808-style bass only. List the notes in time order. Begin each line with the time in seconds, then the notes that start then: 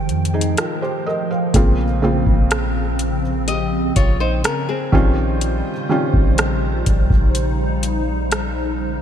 Already playing: F1
0.09 F2
1.54 A#1
2.27 A#1
3.96 A#1
4.93 A#1
6.14 A#1
6.87 A#1
7.10 A#1